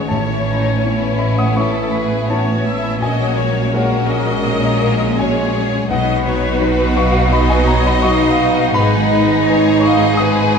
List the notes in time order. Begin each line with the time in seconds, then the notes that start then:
Already playing: G#2 D#3 B3 C#4 G#4 C#5 D#5 C#6
0.08 A1 A2 B3 C#4 E4 C#5 A5
0.28 E3
0.47 B3 D#4
0.65 E4
0.83 B3 E4 C#5
1.02 B4
1.18 D#5 E5 B5
1.37 F#5 C#6 D#6
1.56 B3 E4 A4 C#5 E5 C#6
1.74 C#6
1.92 G#4 B4
2.09 C#5
2.28 B3 C#4 E4 F#4 C#5 A5
2.46 B3
2.64 E3 E4 E5
2.82 B3
3.00 A#1 A#2 G#3 A#3 C#4 F#4 C#5 D#5 G#5
3.19 F#3
3.36 G#3 C#5
3.54 F#4
3.72 G#3 A#3 F#4 A#4 C#5 F#5
3.91 G#4
4.08 D#5 G#5
4.27 C#6
4.44 G#3 A#3 C#4 F#4 A#4 A#5
4.48 C#5
4.63 C#6
4.81 A#3 G#4
4.99 C#5
5.17 G#3 C#4 F#4 G#4 C#5 G#5
5.35 G#3
5.55 F#3
5.71 G#3
5.89 B1 B2 F#3 B3 D#4 F#4 B4 D#5 F#5
6.07 B3
6.25 F#3 C#5
6.43 D#4
6.60 F#3 D#4 B4
6.79 F#4
6.95 D#5 F5 C#6
7.14 B5
7.31 F#3 D#4 B4 D#5 B5
7.50 B4 G#5 B5
7.67 F#4 C#5 A#5
7.85 B4 D#5 B5
8.02 F#3 D#4 B4 F5 C#6
8.21 F#3
8.40 B3
8.57 F#3
8.74 G#1 G#2 G#3 G#4 B4 D#5 B5
8.95 D#3
9.13 G#3
9.29 D#4
9.47 G#3 D#4 B4 C#5
9.81 D#5 F5 C#6
10.02 B5
10.17 G#3 B4 D#5 G#5 D#6
10.21 D#4 B4
10.38 B5